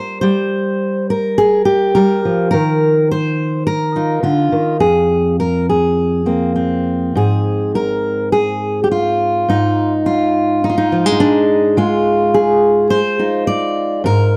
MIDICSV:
0, 0, Header, 1, 2, 480
1, 0, Start_track
1, 0, Tempo, 572519
1, 190, Time_signature, 4, 2, 24, 8
1, 4507, Tempo, 588235
1, 7867, Tempo, 568720
1, 11981, End_track
2, 0, Start_track
2, 0, Title_t, "Steel-string acoustic guitar"
2, 0, Program_c, 0, 25
2, 0, Note_on_c, 0, 55, 68
2, 0, Note_on_c, 0, 72, 88
2, 164, Note_off_c, 0, 55, 0
2, 167, Note_off_c, 0, 72, 0
2, 177, Note_on_c, 0, 72, 88
2, 190, Note_on_c, 0, 55, 65
2, 919, Note_off_c, 0, 72, 0
2, 922, Note_on_c, 0, 70, 88
2, 1156, Note_on_c, 0, 68, 97
2, 1382, Note_off_c, 0, 68, 0
2, 1386, Note_on_c, 0, 67, 93
2, 1623, Note_off_c, 0, 70, 0
2, 1633, Note_on_c, 0, 70, 104
2, 1636, Note_off_c, 0, 55, 0
2, 1646, Note_on_c, 0, 55, 62
2, 1885, Note_off_c, 0, 55, 0
2, 1888, Note_on_c, 0, 53, 63
2, 2092, Note_off_c, 0, 70, 0
2, 2102, Note_on_c, 0, 70, 95
2, 2115, Note_off_c, 0, 67, 0
2, 2125, Note_off_c, 0, 53, 0
2, 2127, Note_on_c, 0, 51, 66
2, 2585, Note_off_c, 0, 70, 0
2, 2611, Note_on_c, 0, 72, 92
2, 3070, Note_off_c, 0, 72, 0
2, 3074, Note_on_c, 0, 70, 93
2, 3319, Note_on_c, 0, 63, 42
2, 3324, Note_on_c, 0, 65, 43
2, 3540, Note_off_c, 0, 51, 0
2, 3540, Note_off_c, 0, 65, 0
2, 3544, Note_on_c, 0, 50, 54
2, 3547, Note_off_c, 0, 70, 0
2, 3550, Note_on_c, 0, 65, 77
2, 3784, Note_off_c, 0, 50, 0
2, 3790, Note_on_c, 0, 51, 58
2, 4001, Note_off_c, 0, 63, 0
2, 4024, Note_off_c, 0, 65, 0
2, 4026, Note_on_c, 0, 41, 67
2, 4027, Note_off_c, 0, 51, 0
2, 4027, Note_on_c, 0, 68, 84
2, 4506, Note_off_c, 0, 68, 0
2, 4524, Note_on_c, 0, 70, 83
2, 4752, Note_off_c, 0, 70, 0
2, 4767, Note_on_c, 0, 68, 66
2, 5228, Note_on_c, 0, 58, 40
2, 5233, Note_on_c, 0, 60, 41
2, 5460, Note_off_c, 0, 60, 0
2, 5470, Note_on_c, 0, 60, 45
2, 5955, Note_off_c, 0, 41, 0
2, 5958, Note_on_c, 0, 44, 70
2, 5959, Note_off_c, 0, 58, 0
2, 5960, Note_off_c, 0, 68, 0
2, 5969, Note_on_c, 0, 68, 77
2, 6443, Note_off_c, 0, 68, 0
2, 6446, Note_on_c, 0, 70, 90
2, 6909, Note_off_c, 0, 70, 0
2, 6912, Note_on_c, 0, 68, 90
2, 7328, Note_off_c, 0, 68, 0
2, 7331, Note_on_c, 0, 67, 62
2, 7391, Note_off_c, 0, 67, 0
2, 7395, Note_on_c, 0, 65, 81
2, 7856, Note_off_c, 0, 44, 0
2, 7859, Note_on_c, 0, 44, 66
2, 7865, Note_off_c, 0, 60, 0
2, 7868, Note_on_c, 0, 63, 87
2, 8226, Note_off_c, 0, 65, 0
2, 8345, Note_on_c, 0, 65, 78
2, 8827, Note_off_c, 0, 63, 0
2, 8835, Note_on_c, 0, 63, 87
2, 8871, Note_off_c, 0, 65, 0
2, 8881, Note_on_c, 0, 65, 72
2, 8940, Note_off_c, 0, 63, 0
2, 8950, Note_on_c, 0, 63, 90
2, 9073, Note_on_c, 0, 53, 50
2, 9187, Note_off_c, 0, 53, 0
2, 9187, Note_on_c, 0, 56, 41
2, 9231, Note_off_c, 0, 63, 0
2, 9241, Note_on_c, 0, 63, 63
2, 9307, Note_on_c, 0, 62, 95
2, 9418, Note_off_c, 0, 65, 0
2, 9779, Note_off_c, 0, 56, 0
2, 9780, Note_off_c, 0, 63, 0
2, 9784, Note_off_c, 0, 62, 0
2, 9789, Note_on_c, 0, 56, 75
2, 9796, Note_on_c, 0, 65, 86
2, 10272, Note_on_c, 0, 68, 88
2, 10741, Note_off_c, 0, 65, 0
2, 10745, Note_on_c, 0, 72, 115
2, 10813, Note_off_c, 0, 44, 0
2, 10989, Note_off_c, 0, 68, 0
2, 10989, Note_on_c, 0, 63, 44
2, 10992, Note_on_c, 0, 65, 48
2, 11221, Note_off_c, 0, 72, 0
2, 11224, Note_on_c, 0, 74, 99
2, 11678, Note_off_c, 0, 63, 0
2, 11680, Note_off_c, 0, 65, 0
2, 11681, Note_off_c, 0, 56, 0
2, 11703, Note_on_c, 0, 44, 71
2, 11705, Note_off_c, 0, 74, 0
2, 11718, Note_on_c, 0, 70, 102
2, 11981, Note_off_c, 0, 44, 0
2, 11981, Note_off_c, 0, 70, 0
2, 11981, End_track
0, 0, End_of_file